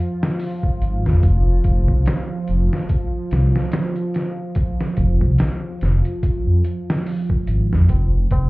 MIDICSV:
0, 0, Header, 1, 5, 480
1, 0, Start_track
1, 0, Key_signature, -4, "minor"
1, 0, Tempo, 833333
1, 707, Time_signature, 4, 2, 24, 8
1, 4895, End_track
2, 0, Start_track
2, 0, Title_t, "Ambient pad"
2, 0, Program_c, 0, 92
2, 0, Note_on_c, 0, 53, 87
2, 0, Note_on_c, 0, 65, 85
2, 4536, Note_off_c, 0, 53, 0
2, 4537, Note_off_c, 0, 65, 0
2, 4543, Note_on_c, 0, 53, 82
2, 4544, Note_on_c, 0, 65, 86
2, 4895, Note_off_c, 0, 53, 0
2, 4895, Note_off_c, 0, 65, 0
2, 4895, End_track
3, 0, Start_track
3, 0, Title_t, "Detuned saw bass"
3, 0, Program_c, 1, 39
3, 471, Note_on_c, 1, 32, 88
3, 608, Note_on_c, 1, 41, 81
3, 617, Note_off_c, 1, 32, 0
3, 697, Note_off_c, 1, 41, 0
3, 712, Note_on_c, 1, 29, 103
3, 924, Note_off_c, 1, 29, 0
3, 951, Note_on_c, 1, 29, 95
3, 1084, Note_on_c, 1, 36, 85
3, 1093, Note_off_c, 1, 29, 0
3, 1175, Note_off_c, 1, 36, 0
3, 1436, Note_on_c, 1, 29, 86
3, 1550, Note_off_c, 1, 29, 0
3, 1914, Note_on_c, 1, 36, 83
3, 2030, Note_off_c, 1, 36, 0
3, 2869, Note_on_c, 1, 29, 95
3, 3001, Note_on_c, 1, 36, 92
3, 3010, Note_off_c, 1, 29, 0
3, 3094, Note_off_c, 1, 36, 0
3, 3354, Note_on_c, 1, 29, 90
3, 3470, Note_off_c, 1, 29, 0
3, 3727, Note_on_c, 1, 41, 105
3, 3817, Note_off_c, 1, 41, 0
3, 4312, Note_on_c, 1, 32, 80
3, 4449, Note_on_c, 1, 41, 76
3, 4458, Note_off_c, 1, 32, 0
3, 4538, Note_off_c, 1, 41, 0
3, 4547, Note_on_c, 1, 29, 105
3, 4762, Note_off_c, 1, 29, 0
3, 4787, Note_on_c, 1, 29, 88
3, 4895, Note_off_c, 1, 29, 0
3, 4895, End_track
4, 0, Start_track
4, 0, Title_t, "Tabla"
4, 4546, Note_on_c, 9, 60, 39
4, 4603, Note_off_c, 9, 60, 0
4, 4793, Note_on_c, 9, 60, 86
4, 4850, Note_off_c, 9, 60, 0
4, 4895, End_track
5, 0, Start_track
5, 0, Title_t, "Drums"
5, 132, Note_on_c, 9, 38, 109
5, 190, Note_off_c, 9, 38, 0
5, 228, Note_on_c, 9, 46, 78
5, 286, Note_off_c, 9, 46, 0
5, 364, Note_on_c, 9, 36, 96
5, 422, Note_off_c, 9, 36, 0
5, 471, Note_on_c, 9, 42, 64
5, 528, Note_off_c, 9, 42, 0
5, 612, Note_on_c, 9, 38, 39
5, 669, Note_off_c, 9, 38, 0
5, 708, Note_on_c, 9, 42, 86
5, 709, Note_on_c, 9, 36, 106
5, 766, Note_off_c, 9, 42, 0
5, 767, Note_off_c, 9, 36, 0
5, 946, Note_on_c, 9, 42, 69
5, 948, Note_on_c, 9, 36, 97
5, 1003, Note_off_c, 9, 42, 0
5, 1006, Note_off_c, 9, 36, 0
5, 1084, Note_on_c, 9, 36, 95
5, 1141, Note_off_c, 9, 36, 0
5, 1186, Note_on_c, 9, 42, 82
5, 1195, Note_on_c, 9, 38, 116
5, 1244, Note_off_c, 9, 42, 0
5, 1253, Note_off_c, 9, 38, 0
5, 1427, Note_on_c, 9, 42, 64
5, 1484, Note_off_c, 9, 42, 0
5, 1573, Note_on_c, 9, 38, 53
5, 1630, Note_off_c, 9, 38, 0
5, 1666, Note_on_c, 9, 42, 87
5, 1668, Note_on_c, 9, 36, 109
5, 1724, Note_off_c, 9, 42, 0
5, 1725, Note_off_c, 9, 36, 0
5, 1908, Note_on_c, 9, 42, 71
5, 1917, Note_on_c, 9, 38, 50
5, 1965, Note_off_c, 9, 42, 0
5, 1974, Note_off_c, 9, 38, 0
5, 2049, Note_on_c, 9, 38, 53
5, 2106, Note_off_c, 9, 38, 0
5, 2141, Note_on_c, 9, 42, 87
5, 2150, Note_on_c, 9, 38, 114
5, 2199, Note_off_c, 9, 42, 0
5, 2208, Note_off_c, 9, 38, 0
5, 2279, Note_on_c, 9, 42, 42
5, 2337, Note_off_c, 9, 42, 0
5, 2386, Note_on_c, 9, 42, 64
5, 2396, Note_on_c, 9, 38, 50
5, 2444, Note_off_c, 9, 42, 0
5, 2453, Note_off_c, 9, 38, 0
5, 2621, Note_on_c, 9, 42, 87
5, 2626, Note_on_c, 9, 36, 111
5, 2679, Note_off_c, 9, 42, 0
5, 2683, Note_off_c, 9, 36, 0
5, 2768, Note_on_c, 9, 38, 50
5, 2826, Note_off_c, 9, 38, 0
5, 2861, Note_on_c, 9, 42, 66
5, 2865, Note_on_c, 9, 36, 97
5, 2919, Note_off_c, 9, 42, 0
5, 2923, Note_off_c, 9, 36, 0
5, 3001, Note_on_c, 9, 36, 93
5, 3059, Note_off_c, 9, 36, 0
5, 3101, Note_on_c, 9, 42, 85
5, 3110, Note_on_c, 9, 38, 119
5, 3159, Note_off_c, 9, 42, 0
5, 3168, Note_off_c, 9, 38, 0
5, 3348, Note_on_c, 9, 42, 67
5, 3358, Note_on_c, 9, 38, 42
5, 3406, Note_off_c, 9, 42, 0
5, 3415, Note_off_c, 9, 38, 0
5, 3485, Note_on_c, 9, 42, 43
5, 3542, Note_off_c, 9, 42, 0
5, 3588, Note_on_c, 9, 36, 111
5, 3589, Note_on_c, 9, 42, 86
5, 3646, Note_off_c, 9, 36, 0
5, 3647, Note_off_c, 9, 42, 0
5, 3827, Note_on_c, 9, 42, 67
5, 3885, Note_off_c, 9, 42, 0
5, 3974, Note_on_c, 9, 38, 107
5, 4032, Note_off_c, 9, 38, 0
5, 4069, Note_on_c, 9, 46, 84
5, 4126, Note_off_c, 9, 46, 0
5, 4203, Note_on_c, 9, 36, 96
5, 4261, Note_off_c, 9, 36, 0
5, 4305, Note_on_c, 9, 42, 73
5, 4363, Note_off_c, 9, 42, 0
5, 4451, Note_on_c, 9, 38, 39
5, 4508, Note_off_c, 9, 38, 0
5, 4544, Note_on_c, 9, 42, 89
5, 4547, Note_on_c, 9, 36, 113
5, 4602, Note_off_c, 9, 42, 0
5, 4605, Note_off_c, 9, 36, 0
5, 4785, Note_on_c, 9, 42, 71
5, 4787, Note_on_c, 9, 36, 95
5, 4842, Note_off_c, 9, 42, 0
5, 4845, Note_off_c, 9, 36, 0
5, 4895, End_track
0, 0, End_of_file